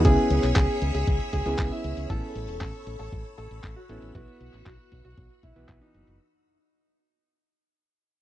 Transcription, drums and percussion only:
0.05 kick loud
0.05 closed hi-hat medium
0.30 closed hi-hat medium
0.43 clap soft
0.43 closed hi-hat soft
0.56 kick loud
0.56 clap loud
0.56 closed hi-hat medium
0.82 closed hi-hat medium
0.95 closed hi-hat soft
1.07 kick loud
1.07 closed hi-hat medium
1.20 closed hi-hat soft
1.33 kick medium
1.33 closed hi-hat medium
1.46 closed hi-hat soft
1.59 kick loud
1.59 clap loud
1.59 closed hi-hat medium
1.84 closed hi-hat medium
1.97 closed hi-hat soft
2.10 kick loud
2.10 closed hi-hat medium
2.36 closed hi-hat medium
2.48 closed hi-hat soft
2.61 kick loud
2.61 clap loud
2.61 closed hi-hat medium
2.87 closed hi-hat medium
3.00 closed hi-hat soft
3.12 kick loud
3.12 closed hi-hat medium
3.25 closed hi-hat soft
3.38 closed hi-hat medium
3.51 closed hi-hat soft
3.64 kick loud
3.64 clap loud
3.64 closed hi-hat medium
3.89 closed hi-hat medium
4.02 closed hi-hat soft
4.15 kick loud
4.15 closed hi-hat medium
4.28 closed hi-hat soft
4.41 closed hi-hat medium
4.53 clap soft
4.53 closed hi-hat soft
4.66 kick loud
4.66 clap loud
4.66 closed hi-hat medium
4.79 closed hi-hat soft
4.92 kick medium
4.92 closed hi-hat medium
5.05 closed hi-hat soft
5.18 kick loud
5.18 closed hi-hat medium
5.30 closed hi-hat soft
5.43 kick medium
5.43 closed hi-hat medium
5.56 closed hi-hat soft
5.69 kick loud
5.69 clap loud
5.69 closed hi-hat medium
5.82 closed hi-hat soft
5.94 closed hi-hat medium
6.07 closed hi-hat soft

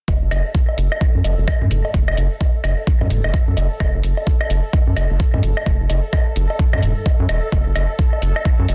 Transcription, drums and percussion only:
0.08 kick loud
0.08 low woodblock soft
0.31 closed hi-hat medium
0.31 claves medium
0.31 low woodblock medium
0.55 kick loud
0.69 low woodblock soft
0.78 closed hi-hat medium
0.92 claves medium
0.92 low woodblock medium
1.01 kick loud
1.24 closed hi-hat medium
1.24 low woodblock soft
1.48 kick loud
1.48 claves medium
1.48 low woodblock medium
1.61 mid tom medium
1.71 closed hi-hat medium
1.85 low woodblock soft
1.94 kick loud
2.08 claves medium
2.08 low woodblock medium
2.17 closed hi-hat medium
2.41 kick loud
2.41 low woodblock soft
2.64 closed hi-hat medium
2.64 claves medium
2.64 low woodblock medium
2.87 kick loud
3.01 mid tom medium
3.01 low woodblock soft
3.10 closed hi-hat medium
3.10 mid tom medium
3.24 claves medium
3.24 low woodblock medium
3.34 kick loud
3.57 closed hi-hat medium
3.57 low woodblock soft
3.80 kick loud
3.80 claves medium
3.80 low woodblock medium
4.04 closed hi-hat medium
4.17 low woodblock soft
4.27 kick loud
4.41 claves medium
4.41 low woodblock medium
4.50 closed hi-hat medium
4.73 kick loud
4.73 low woodblock soft
4.96 closed hi-hat medium
4.96 claves medium
4.96 low woodblock medium
5.20 kick loud
5.34 mid tom medium
5.34 low woodblock soft
5.43 closed hi-hat medium
5.57 claves medium
5.57 low woodblock medium
5.66 kick loud
5.90 closed hi-hat medium
5.90 low woodblock soft
6.13 kick loud
6.13 claves medium
6.13 low woodblock medium
6.36 closed hi-hat medium
6.50 low woodblock soft
6.59 kick loud
6.73 mid tom medium
6.73 claves medium
6.73 low woodblock medium
6.82 closed hi-hat medium
6.82 mid tom medium
7.06 kick loud
7.06 low woodblock soft
7.29 closed hi-hat medium
7.29 claves medium
7.29 low woodblock medium
7.52 kick loud
7.52 low woodblock soft
7.76 closed hi-hat medium
7.76 claves medium
7.76 low woodblock medium
7.99 kick loud
8.13 low woodblock soft
8.22 closed hi-hat medium
8.36 claves medium
8.36 low woodblock medium
8.45 kick loud
8.69 closed hi-hat medium
8.69 low woodblock soft

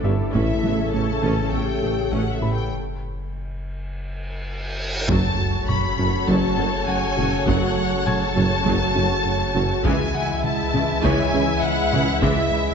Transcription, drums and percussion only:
0.35 taiko medium
1.23 taiko medium
5.09 taiko loud
5.69 taiko mid medium
5.99 taiko mid soft
6.28 taiko medium
7.18 taiko mid soft
7.47 taiko medium
8.07 taiko mid medium
8.37 taiko mid soft
8.67 taiko medium
9.55 taiko mid soft
9.85 taiko loud
10.44 taiko mid medium
10.74 taiko mid soft
11.04 taiko medium
11.93 taiko mid medium
12.23 taiko loud

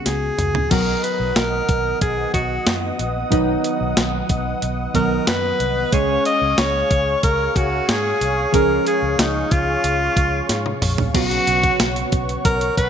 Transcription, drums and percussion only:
0.06 snare medium
0.06 closed hi-hat medium
0.38 closed hi-hat medium
0.38 mid tom medium
0.55 floor tom medium
0.71 kick loud
0.71 closed hi-hat medium
0.71 crash medium
1.04 closed hi-hat medium
1.36 snare loud
1.36 closed hi-hat medium
1.69 kick medium
1.69 closed hi-hat medium
2.01 kick loud
2.01 closed hi-hat medium
2.34 kick medium
2.34 closed hi-hat medium
2.67 snare loud
2.67 closed hi-hat medium
2.99 closed hi-hat medium
3.32 kick loud
3.32 closed hi-hat medium
3.64 closed hi-hat medium
3.97 snare loud
3.97 closed hi-hat medium
4.29 kick medium
4.29 closed hi-hat medium
4.62 closed hi-hat medium
4.95 kick medium
4.95 closed hi-hat medium
5.27 snare loud
5.27 closed hi-hat loud
5.60 closed hi-hat medium
5.92 kick loud
5.92 closed hi-hat medium
6.25 closed hi-hat medium
6.58 snare loud
6.58 closed hi-hat loud
6.91 kick medium
6.91 closed hi-hat medium
7.23 kick loud
7.23 closed hi-hat medium
7.56 kick medium
7.56 closed hi-hat medium
7.89 snare loud
7.89 closed hi-hat medium
8.21 closed hi-hat medium
8.54 kick loud
8.54 closed hi-hat medium
8.87 closed hi-hat medium
9.19 snare loud
9.19 closed hi-hat loud
9.51 kick medium
9.51 closed hi-hat medium
9.84 closed hi-hat medium
10.17 kick medium
10.17 closed hi-hat medium
10.49 snare medium
10.49 closed hi-hat loud
10.66 high tom medium
10.82 mid tom medium
10.82 open hi-hat medium
10.98 floor tom medium
11.15 kick loud
11.15 closed hi-hat medium
11.15 crash loud
11.31 closed hi-hat medium
11.47 closed hi-hat medium
11.63 kick medium
11.63 closed hi-hat medium
11.80 snare loud
11.80 closed hi-hat loud
11.80 tambourine medium
11.96 closed hi-hat medium
12.12 kick medium
12.12 closed hi-hat medium
12.29 closed hi-hat soft
12.45 kick loud
12.45 closed hi-hat medium
12.61 closed hi-hat medium
12.77 kick medium
12.77 closed hi-hat medium

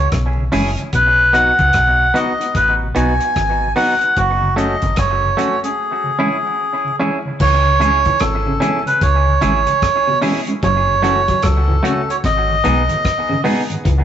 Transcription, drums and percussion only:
0.12 kick loud
0.12 cross-stick loud
0.12 closed hi-hat medium
0.52 open hi-hat medium
0.77 closed hi-hat soft
0.93 kick medium
0.93 closed hi-hat medium
1.34 cross-stick medium
1.34 closed hi-hat medium
1.59 kick medium
1.59 closed hi-hat soft
1.73 kick loud
1.73 cross-stick loud
1.73 closed hi-hat medium
2.16 closed hi-hat medium
2.41 closed hi-hat soft
2.55 kick loud
2.55 closed hi-hat medium
2.96 closed hi-hat medium
3.20 closed hi-hat soft
3.36 kick medium
3.36 cross-stick medium
3.36 closed hi-hat medium
3.76 open hi-hat medium
4.01 closed hi-hat soft
4.17 kick medium
4.17 closed hi-hat medium
4.58 closed hi-hat medium
4.82 kick medium
4.82 closed hi-hat medium
4.96 kick loud
4.96 cross-stick loud
4.96 closed hi-hat medium
5.39 closed hi-hat medium
5.64 closed hi-hat soft
7.40 kick medium
7.40 crash loud
7.82 closed hi-hat medium
8.05 kick medium
8.05 closed hi-hat medium
8.20 kick loud
8.20 cross-stick loud
8.20 closed hi-hat loud
8.62 closed hi-hat medium
8.87 closed hi-hat soft
9.01 kick loud
9.01 closed hi-hat loud
9.42 closed hi-hat medium
9.67 closed hi-hat soft
9.82 kick loud
9.82 cross-stick loud
9.82 closed hi-hat medium
10.22 open hi-hat medium
10.47 closed hi-hat medium
10.63 kick medium
10.63 closed hi-hat medium
11.04 closed hi-hat medium
11.28 kick medium
11.28 closed hi-hat medium
11.43 kick loud
11.43 cross-stick loud
11.43 closed hi-hat loud
11.85 closed hi-hat medium
12.10 closed hi-hat soft
12.24 kick loud
12.24 closed hi-hat medium
12.65 closed hi-hat medium
12.89 closed hi-hat medium
13.05 kick loud
13.05 cross-stick loud
13.05 closed hi-hat medium
13.45 open hi-hat medium
13.70 closed hi-hat medium
13.85 kick loud
13.85 closed hi-hat medium

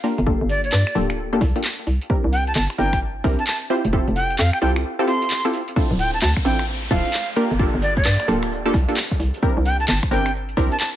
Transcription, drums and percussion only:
0.04 open hi-hat medium
0.18 closed hi-hat medium
0.27 kick loud
0.49 open hi-hat loud
0.64 closed hi-hat medium
0.72 clap loud
0.87 finger snap medium
0.95 open hi-hat medium
1.10 finger snap medium
1.10 closed hi-hat medium
1.41 kick loud
1.41 open hi-hat loud
1.56 closed hi-hat medium
1.64 clap loud
1.79 closed hi-hat medium
1.87 open hi-hat medium
2.02 closed hi-hat medium
2.10 kick loud
2.33 open hi-hat loud
2.47 closed hi-hat medium
2.56 clap loud
2.70 finger snap medium
2.78 open hi-hat loud
2.93 finger snap medium
2.93 kick medium
2.93 closed hi-hat medium
3.24 kick loud
3.24 open hi-hat loud
3.39 closed hi-hat medium
3.47 clap loud
3.62 closed hi-hat medium
3.70 open hi-hat medium
3.85 closed hi-hat medium
3.93 kick loud
4.08 closed hi-hat soft
4.16 open hi-hat loud
4.30 closed hi-hat medium
4.39 clap loud
4.53 finger snap medium
4.53 closed hi-hat soft
4.62 open hi-hat medium
4.76 finger snap medium
4.76 closed hi-hat medium
5.07 open hi-hat loud
5.22 closed hi-hat medium
5.30 clap loud
5.45 closed hi-hat medium
5.53 open hi-hat loud
5.68 closed hi-hat medium
5.76 kick loud
5.76 shaker soft
5.99 open hi-hat loud
5.99 shaker medium
6.14 closed hi-hat medium
6.14 shaker soft
6.22 clap loud
6.22 shaker soft
6.37 finger snap medium
6.37 kick medium
6.37 closed hi-hat medium
6.45 open hi-hat loud
6.45 shaker medium
6.59 finger snap medium
6.59 closed hi-hat medium
6.59 shaker medium
6.67 shaker soft
6.82 closed hi-hat medium
6.91 kick loud
6.91 open hi-hat loud
6.91 shaker loud
7.05 closed hi-hat medium
7.05 shaker soft
7.13 clap loud
7.13 shaker soft
7.36 open hi-hat medium
7.36 shaker medium
7.51 closed hi-hat medium
7.51 shaker soft
7.59 kick loud
7.59 shaker soft
7.82 open hi-hat loud
7.82 shaker loud
7.97 kick loud
7.97 closed hi-hat medium
7.97 shaker medium
8.05 clap loud
8.05 shaker soft
8.20 finger snap medium
8.20 closed hi-hat soft
8.28 open hi-hat loud
8.28 shaker medium
8.42 finger snap medium
8.42 closed hi-hat medium
8.42 shaker medium
8.51 shaker soft
8.66 closed hi-hat soft
8.74 finger snap soft
8.74 kick loud
8.74 open hi-hat loud
8.74 shaker loud
8.88 closed hi-hat medium
8.88 shaker medium
8.97 clap loud
8.97 shaker soft
9.11 kick medium
9.20 open hi-hat medium
9.20 shaker medium
9.34 closed hi-hat medium
9.34 shaker medium
9.43 kick loud
9.43 shaker soft
9.65 open hi-hat loud
9.65 shaker medium
9.80 closed hi-hat medium
9.80 shaker medium
9.88 clap loud
9.88 shaker soft
10.03 finger snap medium
10.03 kick medium
10.03 closed hi-hat soft
10.11 open hi-hat medium
10.11 shaker loud
10.26 finger snap medium
10.26 closed hi-hat medium
10.26 shaker medium
10.34 shaker soft
10.49 closed hi-hat soft
10.57 kick loud
10.57 open hi-hat loud
10.57 shaker medium
10.72 closed hi-hat medium
10.72 shaker medium
10.79 clap loud
10.79 shaker soft

